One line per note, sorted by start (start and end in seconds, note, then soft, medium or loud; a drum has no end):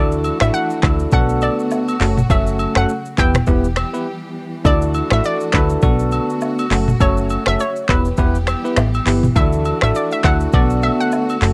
0.00 0.32 D2 loud
0.00 1.11 E3 medium
0.00 3.15 A3 medium
0.00 0.37 D4 medium
0.00 1.11 D4 medium
0.00 0.37 E4 medium
0.00 0.37 F#4 medium
0.00 1.11 F#4 medium
0.00 0.37 A4 loud
0.00 0.43 D5 loud
0.12 shaker medium
0.24 high agogo medium
0.24 shaker medium
0.40 0.51 A1 medium
0.40 0.80 D4 medium
0.40 0.80 E4 medium
0.40 0.80 F#4 medium
0.40 0.80 A4 medium
0.40 0.54 E5 medium
0.40 finger snap medium
0.40 cross-stick loud
0.40 shaker medium
0.54 1.08 F#5 loud
0.54 shaker medium
0.70 shaker medium
0.83 1.07 D2 loud
0.83 1.10 D4 medium
0.83 1.10 E4 medium
0.83 1.10 F#4 medium
0.83 1.10 A4 medium
0.83 finger snap medium
0.83 kick loud
0.83 cross-stick medium
0.83 clap medium
0.83 high agogo medium
0.99 shaker medium
1.11 1.49 B1 loud
1.11 2.00 D3 medium
1.11 1.95 B3 loud
1.11 2.00 B3 medium
1.11 1.95 D4 medium
1.11 3.16 F#4 medium
1.11 1.95 F#4 medium
1.11 1.95 A4 loud
1.11 1.43 F#5 loud
1.11 kick medium
1.11 shaker medium
1.29 shaker medium
1.41 1.97 D5 medium
1.41 high agogo medium
1.41 shaker soft
1.59 shaker soft
1.71 low woodblock medium
1.71 shaker medium
1.88 high agogo medium
1.88 shaker soft
2.00 2.24 F#1 loud
2.00 3.17 C#3 medium
2.00 3.17 F#3 medium
2.00 2.19 A3 medium
2.00 2.19 C#4 medium
2.00 2.19 F#4 medium
2.00 2.19 A4 medium
2.00 clap medium
2.00 open hi-hat medium
2.17 mid tom medium
2.17 shaker medium
2.30 2.67 F#1 loud
2.30 2.72 A3 medium
2.30 2.72 C#4 medium
2.30 2.72 F#4 medium
2.30 2.73 A4 loud
2.30 2.78 E5 loud
2.30 kick loud
2.30 high agogo medium
2.30 shaker medium
2.47 shaker medium
2.59 high agogo medium
2.59 shaker medium
2.75 2.86 F#1 medium
2.75 2.91 A3 medium
2.75 2.91 C#4 medium
2.75 2.91 F#4 medium
2.75 2.91 A4 medium
2.75 3.16 F#5 loud
2.75 finger snap medium
2.75 cross-stick loud
2.75 shaker medium
2.89 shaker medium
3.05 shaker soft
3.18 3.42 E1 loud
3.18 5.80 E3 medium
3.18 4.63 G3 medium
3.18 3.37 B3 medium
3.18 4.63 B3 medium
3.18 3.37 E4 medium
3.18 4.63 G4 medium
3.18 3.37 G4 medium
3.18 3.37 B4 medium
3.18 4.32 G5 loud
3.18 kick loud
3.18 clap medium
3.18 high agogo medium
3.18 shaker medium
3.34 finger snap medium
3.34 cross-stick loud
3.34 mid tom loud
3.34 shaker medium
3.46 3.85 E1 loud
3.46 3.66 B3 medium
3.46 3.66 E4 medium
3.46 3.66 G4 medium
3.46 3.66 B4 loud
3.46 kick loud
3.46 shaker medium
3.64 shaker medium
3.76 finger snap medium
3.76 cross-stick medium
3.76 high agogo medium
3.76 shaker soft
3.93 4.06 B3 medium
3.93 4.06 E4 medium
3.93 4.06 G4 medium
3.93 4.06 B4 medium
3.93 shaker soft
4.64 5.02 D2 loud
4.64 7.86 A3 medium
4.64 5.07 D4 medium
4.64 5.82 D4 medium
4.64 5.07 E4 medium
4.64 5.07 F#4 medium
4.64 5.82 F#4 medium
4.64 5.08 A4 loud
4.64 5.14 D5 loud
4.64 kick loud
4.64 high agogo medium
4.64 shaker medium
4.82 shaker medium
4.94 high agogo medium
4.94 shaker medium
5.10 5.21 A1 medium
5.10 5.50 D4 medium
5.10 5.50 E4 medium
5.10 5.50 F#4 medium
5.10 5.51 A4 medium
5.10 5.25 E5 loud
5.10 finger snap medium
5.10 cross-stick loud
5.10 shaker medium
5.24 5.55 D5 loud
5.24 shaker medium
5.41 shaker medium
5.53 5.77 D2 loud
5.53 5.81 D4 medium
5.53 5.81 E4 medium
5.53 5.81 F#4 medium
5.53 5.81 A4 medium
5.53 6.68 B4 medium
5.53 finger snap medium
5.53 kick loud
5.53 cross-stick medium
5.53 clap medium
5.53 high agogo medium
5.70 shaker medium
5.82 6.20 B1 loud
5.82 6.70 D3 medium
5.82 6.65 B3 medium
5.82 6.70 B3 medium
5.82 6.65 D4 medium
5.82 6.65 F#4 medium
5.82 7.87 F#4 loud
5.82 6.65 A4 loud
5.82 kick loud
5.82 shaker medium
5.99 shaker medium
6.11 high agogo medium
6.11 shaker soft
6.30 shaker medium
6.41 low woodblock medium
6.41 shaker medium
6.59 high agogo medium
6.59 shaker medium
6.71 6.95 F#1 loud
6.71 7.88 C#3 medium
6.71 7.88 F#3 medium
6.71 6.90 A3 medium
6.71 6.90 C#4 medium
6.71 6.90 F#4 medium
6.71 6.90 A4 medium
6.71 clap medium
6.71 open hi-hat medium
6.88 mid tom medium
6.88 shaker medium
7.00 7.38 F#1 loud
7.00 7.43 A3 medium
7.00 7.43 C#4 medium
7.00 7.43 F#4 medium
7.00 7.43 A4 loud
7.00 7.49 C#5 loud
7.00 kick loud
7.00 high agogo medium
7.00 shaker medium
7.17 shaker medium
7.30 high agogo medium
7.30 shaker medium
7.46 7.57 F#1 medium
7.46 7.61 A3 medium
7.46 7.62 C#4 medium
7.46 7.62 F#4 medium
7.46 7.62 A4 medium
7.46 7.60 E5 loud
7.46 finger snap medium
7.46 cross-stick loud
7.46 shaker medium
7.60 7.90 C#5 loud
7.60 shaker medium
7.76 shaker medium
7.88 8.12 E1 loud
7.88 10.51 E3 medium
7.88 9.34 G3 medium
7.88 8.07 B3 medium
7.88 9.34 B3 medium
7.88 8.07 E4 medium
7.88 9.34 G4 medium
7.88 8.08 G4 medium
7.88 8.08 B4 medium
7.88 9.03 B4 medium
7.88 kick loud
7.88 clap medium
7.88 high agogo medium
8.05 shaker medium
8.17 8.55 E1 loud
8.17 8.37 B3 loud
8.17 8.37 E4 medium
8.17 8.37 G4 medium
8.17 8.37 B4 loud
8.17 kick medium
8.17 shaker medium
8.35 shaker medium
8.47 finger snap medium
8.47 cross-stick medium
8.47 high agogo medium
8.47 shaker soft
8.64 8.79 B3 medium
8.64 8.79 E4 medium
8.64 8.79 G4 medium
8.64 8.79 B4 medium
8.64 shaker soft
8.76 9.01 A1 loud
8.76 finger snap medium
8.76 cross-stick loud
8.76 low woodblock medium
8.76 shaker medium
8.94 high agogo medium
8.94 shaker soft
9.06 9.30 G1 medium
9.06 9.25 B3 medium
9.06 9.25 E4 medium
9.06 9.25 G4 medium
9.06 9.25 B4 medium
9.06 clap medium
9.06 open hi-hat medium
9.23 mid tom medium
9.23 shaker medium
9.36 9.73 D2 loud
9.36 11.53 A3 medium
9.36 9.78 D4 loud
9.36 10.52 D4 medium
9.36 9.78 E4 medium
9.36 9.78 F#4 medium
9.36 11.53 F#4 medium
9.36 9.78 A4 loud
9.36 9.82 E5 loud
9.36 kick loud
9.36 high agogo medium
9.36 shaker medium
9.53 shaker medium
9.65 high agogo medium
9.65 shaker medium
9.81 9.92 A1 medium
9.81 10.21 D4 medium
9.81 10.21 E4 medium
9.81 10.21 F#4 medium
9.81 10.21 A4 medium
9.81 9.96 E5 medium
9.81 finger snap medium
9.81 cross-stick loud
9.81 shaker medium
9.95 10.11 D5 medium
9.95 shaker medium
10.11 10.18 E5 loud
10.11 shaker medium
10.24 10.48 D2 loud
10.24 10.52 D4 medium
10.24 10.52 E4 medium
10.24 10.52 F#4 medium
10.24 10.52 A4 medium
10.24 10.55 F#5 loud
10.24 finger snap medium
10.24 kick loud
10.24 cross-stick medium
10.24 clap medium
10.24 high agogo medium
10.40 shaker medium
10.53 10.91 B1 loud
10.53 11.41 D3 medium
10.53 11.36 B3 medium
10.53 11.41 B3 medium
10.53 11.36 D4 medium
10.53 11.36 F#4 medium
10.53 11.36 A4 loud
10.53 10.84 D5 medium
10.53 kick loud
10.53 shaker medium
10.70 shaker medium
10.82 11.01 E5 loud
10.82 high agogo medium
10.82 shaker soft
11.00 11.39 F#5 loud
11.00 shaker soft
11.12 low woodblock medium
11.12 shaker medium
11.29 high agogo medium
11.29 shaker soft
11.41 11.53 F#1 loud
11.41 11.53 C#3 medium
11.41 11.53 F#3 medium
11.41 11.53 A3 medium
11.41 11.53 C#4 medium
11.41 11.53 F#4 medium
11.41 11.53 A4 medium
11.41 clap medium
11.41 open hi-hat medium